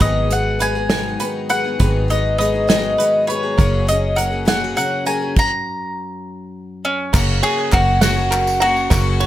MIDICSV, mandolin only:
0, 0, Header, 1, 2, 480
1, 0, Start_track
1, 0, Tempo, 593472
1, 11, Time_signature, 6, 3, 24, 8
1, 7494, End_track
2, 0, Start_track
2, 0, Title_t, "Mandolin"
2, 0, Program_c, 0, 25
2, 11, Note_on_c, 0, 75, 85
2, 259, Note_off_c, 0, 75, 0
2, 262, Note_on_c, 0, 78, 75
2, 496, Note_off_c, 0, 78, 0
2, 499, Note_on_c, 0, 80, 85
2, 1186, Note_off_c, 0, 80, 0
2, 1212, Note_on_c, 0, 78, 87
2, 1663, Note_off_c, 0, 78, 0
2, 1701, Note_on_c, 0, 75, 80
2, 1919, Note_off_c, 0, 75, 0
2, 1929, Note_on_c, 0, 75, 73
2, 2171, Note_off_c, 0, 75, 0
2, 2181, Note_on_c, 0, 75, 81
2, 2644, Note_off_c, 0, 75, 0
2, 2648, Note_on_c, 0, 73, 77
2, 3139, Note_off_c, 0, 73, 0
2, 3142, Note_on_c, 0, 75, 80
2, 3364, Note_off_c, 0, 75, 0
2, 3367, Note_on_c, 0, 78, 81
2, 3613, Note_off_c, 0, 78, 0
2, 3623, Note_on_c, 0, 78, 83
2, 3848, Note_off_c, 0, 78, 0
2, 3857, Note_on_c, 0, 78, 88
2, 4095, Note_off_c, 0, 78, 0
2, 4098, Note_on_c, 0, 80, 88
2, 4322, Note_off_c, 0, 80, 0
2, 4358, Note_on_c, 0, 82, 94
2, 5514, Note_off_c, 0, 82, 0
2, 5538, Note_on_c, 0, 61, 79
2, 5984, Note_off_c, 0, 61, 0
2, 6011, Note_on_c, 0, 68, 92
2, 6254, Note_off_c, 0, 68, 0
2, 6257, Note_on_c, 0, 66, 82
2, 6484, Note_off_c, 0, 66, 0
2, 6493, Note_on_c, 0, 66, 93
2, 6960, Note_off_c, 0, 66, 0
2, 6970, Note_on_c, 0, 66, 94
2, 7494, Note_off_c, 0, 66, 0
2, 7494, End_track
0, 0, End_of_file